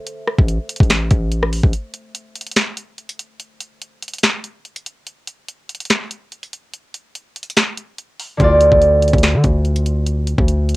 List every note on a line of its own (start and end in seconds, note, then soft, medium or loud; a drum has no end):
0.00 1.70 A3 medium
0.00 1.69 A4 medium
0.00 1.70 C5 medium
0.00 1.71 E5 medium
0.07 closed hi-hat medium
0.28 cross-stick medium
0.38 0.59 A1 loud
0.38 kick medium
0.48 closed hi-hat medium
0.69 closed hi-hat medium
0.76 closed hi-hat medium
0.80 1.10 A1 loud
0.80 kick loud
0.80 closed hi-hat soft
0.90 finger snap medium
0.90 snare loud
0.90 closed hi-hat medium
1.11 1.61 A1 loud
1.11 kick medium
1.11 closed hi-hat medium
1.32 closed hi-hat medium
1.43 cross-stick medium
1.53 open hi-hat medium
1.64 1.73 A1 loud
1.64 kick medium
1.73 closed hi-hat medium
1.94 closed hi-hat medium
2.15 closed hi-hat medium
2.36 closed hi-hat medium
2.41 closed hi-hat medium
2.47 closed hi-hat medium
2.52 closed hi-hat medium
2.56 finger snap medium
2.56 snare loud
2.56 closed hi-hat medium
2.77 closed hi-hat medium
2.98 closed hi-hat soft
3.09 closed hi-hat medium
3.19 closed hi-hat medium
3.40 closed hi-hat medium
3.61 closed hi-hat medium
3.82 closed hi-hat medium
4.02 closed hi-hat medium
4.08 closed hi-hat medium
4.13 closed hi-hat medium
4.18 closed hi-hat medium
4.23 finger snap medium
4.23 snare loud
4.23 closed hi-hat medium
4.44 closed hi-hat medium
4.65 closed hi-hat soft
4.76 closed hi-hat medium
4.86 closed hi-hat medium
5.07 closed hi-hat medium
5.27 closed hi-hat medium
5.48 closed hi-hat medium
5.69 closed hi-hat medium
5.75 closed hi-hat medium
5.80 closed hi-hat medium
5.85 closed hi-hat medium
5.90 finger snap medium
5.90 snare loud
5.90 closed hi-hat medium
6.11 closed hi-hat medium
6.32 closed hi-hat soft
6.43 closed hi-hat medium
6.53 closed hi-hat medium
6.73 closed hi-hat medium
6.94 closed hi-hat medium
7.15 closed hi-hat medium
7.36 closed hi-hat medium
7.43 closed hi-hat medium
7.50 closed hi-hat medium
7.56 finger snap medium
7.56 snare loud
7.56 closed hi-hat medium
7.77 closed hi-hat medium
7.98 closed hi-hat medium
8.20 open hi-hat medium
8.37 8.71 D2 loud
8.37 10.76 D3 medium
8.37 10.76 C4 medium
8.37 kick loud
8.37 closed hi-hat medium
8.42 10.76 F4 medium
8.42 10.76 D5 medium
8.61 closed hi-hat medium
8.72 9.12 D2 loud
8.72 kick medium
8.82 closed hi-hat medium
9.03 closed hi-hat medium
9.08 closed hi-hat medium
9.13 9.36 D2 loud
9.13 kick loud
9.13 closed hi-hat medium
9.18 closed hi-hat medium
9.23 finger snap medium
9.23 snare loud
9.23 closed hi-hat medium
9.34 9.44 D3 loud
9.44 10.35 D2 loud
9.44 kick medium
9.44 closed hi-hat medium
9.65 closed hi-hat soft
9.76 closed hi-hat medium
9.86 closed hi-hat medium
10.07 closed hi-hat medium
10.27 closed hi-hat medium
10.39 10.76 D2 loud
10.39 kick medium
10.48 closed hi-hat medium
10.69 closed hi-hat medium